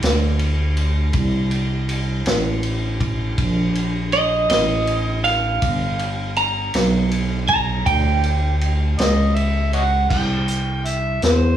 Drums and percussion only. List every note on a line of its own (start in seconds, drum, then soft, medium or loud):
0.02 snare loud
0.02 ride medium
0.39 ride medium
0.77 ride medium
1.13 kick loud
1.13 ride medium
1.51 ride medium
1.89 ride medium
2.26 snare loud
2.26 ride medium
2.63 ride medium
3.00 kick medium
3.00 ride medium
3.38 kick medium
3.38 ride medium
3.75 ride medium
4.12 ride medium
4.50 snare loud
4.50 ride medium
4.87 ride medium
5.24 snare soft
5.24 ride medium
5.62 kick loud
5.62 ride medium
5.99 ride medium
6.36 ride medium
6.74 snare loud
6.74 ride medium
7.11 ride medium
7.48 kick medium
7.48 ride medium
7.86 kick medium
7.86 ride medium
8.23 ride medium
8.61 ride medium
8.99 snare loud
8.99 ride medium
9.36 ride soft
9.73 ride medium
10.10 kick medium
10.10 crash medium
10.48 closed hi-hat medium
10.85 closed hi-hat medium
11.22 snare loud
11.22 closed hi-hat medium